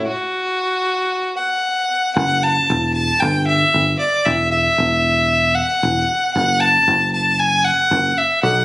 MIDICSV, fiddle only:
0, 0, Header, 1, 2, 480
1, 0, Start_track
1, 0, Key_signature, 3, "minor"
1, 0, Tempo, 522648
1, 61, Time_signature, 4, 2, 24, 8
1, 7943, End_track
2, 0, Start_track
2, 0, Title_t, "Fiddle"
2, 0, Program_c, 0, 110
2, 64, Note_on_c, 0, 66, 86
2, 1232, Note_off_c, 0, 66, 0
2, 1253, Note_on_c, 0, 78, 79
2, 1946, Note_off_c, 0, 78, 0
2, 1982, Note_on_c, 0, 78, 94
2, 2231, Note_on_c, 0, 81, 93
2, 2245, Note_off_c, 0, 78, 0
2, 2692, Note_off_c, 0, 81, 0
2, 2698, Note_on_c, 0, 81, 94
2, 2939, Note_on_c, 0, 79, 102
2, 2952, Note_off_c, 0, 81, 0
2, 3180, Note_off_c, 0, 79, 0
2, 3186, Note_on_c, 0, 76, 101
2, 3635, Note_off_c, 0, 76, 0
2, 3665, Note_on_c, 0, 74, 87
2, 3909, Note_on_c, 0, 76, 88
2, 3923, Note_off_c, 0, 74, 0
2, 4139, Note_off_c, 0, 76, 0
2, 4145, Note_on_c, 0, 76, 101
2, 5100, Note_on_c, 0, 78, 106
2, 5113, Note_off_c, 0, 76, 0
2, 5813, Note_off_c, 0, 78, 0
2, 5818, Note_on_c, 0, 78, 106
2, 6063, Note_on_c, 0, 81, 115
2, 6077, Note_off_c, 0, 78, 0
2, 6544, Note_off_c, 0, 81, 0
2, 6553, Note_on_c, 0, 81, 103
2, 6787, Note_on_c, 0, 80, 119
2, 6800, Note_off_c, 0, 81, 0
2, 7023, Note_on_c, 0, 78, 108
2, 7037, Note_off_c, 0, 80, 0
2, 7509, Note_on_c, 0, 76, 94
2, 7523, Note_off_c, 0, 78, 0
2, 7736, Note_off_c, 0, 76, 0
2, 7741, Note_on_c, 0, 78, 112
2, 7943, Note_off_c, 0, 78, 0
2, 7943, End_track
0, 0, End_of_file